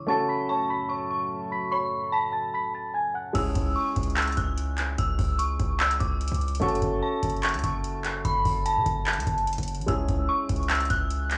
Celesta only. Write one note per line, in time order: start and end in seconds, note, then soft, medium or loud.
0.09 0.27 A5 loud
0.09 0.27 A6 medium
0.28 0.47 B5 medium
0.28 0.47 B6 medium
0.49 0.68 C#5 medium
0.49 0.68 C#6 medium
0.70 0.88 B5 medium
0.70 0.88 B6 medium
0.89 1.47 C#5 medium
0.89 1.47 C#6 medium
1.51 1.70 B5 medium
1.51 1.70 B6 medium
1.72 2.10 C#5 medium
1.72 2.10 C#6 loud
2.13 2.31 B5 medium
2.13 2.31 B6 medium
2.32 2.51 A5 medium
2.32 2.51 A6 medium
2.54 2.72 B5 medium
2.54 2.73 B6 medium
2.74 2.92 A5 medium
2.74 2.93 A6 medium
2.94 3.12 G#5 medium
2.94 3.13 G#6 medium
3.14 3.33 F#5 medium
3.14 3.33 F#6 medium